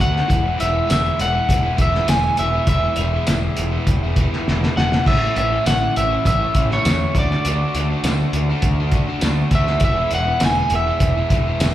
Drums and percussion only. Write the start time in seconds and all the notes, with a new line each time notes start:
0.00 kick, closed hi-hat
0.17 snare
0.30 kick, closed hi-hat
0.60 closed hi-hat
0.90 snare, closed hi-hat, tambourine
1.19 closed hi-hat
1.49 kick, closed hi-hat
1.78 kick, closed hi-hat
1.95 snare
2.08 snare, closed hi-hat, tambourine
2.37 closed hi-hat
2.67 kick, closed hi-hat
2.96 closed hi-hat
3.27 snare, closed hi-hat, tambourine
3.57 closed hi-hat
3.87 kick, closed hi-hat
4.16 kick, closed hi-hat
4.33 snare
4.48 snare
4.63 snare
4.78 snare
4.92 snare
5.06 kick, crash
5.36 closed hi-hat
5.66 snare, closed hi-hat, tambourine
5.96 closed hi-hat
6.25 kick, closed hi-hat
6.55 kick, closed hi-hat
6.71 snare
6.85 snare, closed hi-hat, tambourine
7.15 kick, closed hi-hat
7.31 snare
7.45 closed hi-hat
7.75 closed hi-hat
8.04 snare, closed hi-hat, tambourine
8.33 closed hi-hat
8.62 kick, closed hi-hat
8.91 kick, closed hi-hat
9.21 snare, closed hi-hat, tambourine
9.51 kick, closed hi-hat
9.67 snare
9.80 kick, closed hi-hat
10.11 closed hi-hat
10.40 snare, closed hi-hat, tambourine
10.70 closed hi-hat
11.00 kick, closed hi-hat
11.30 kick, closed hi-hat
11.60 snare, closed hi-hat, tambourine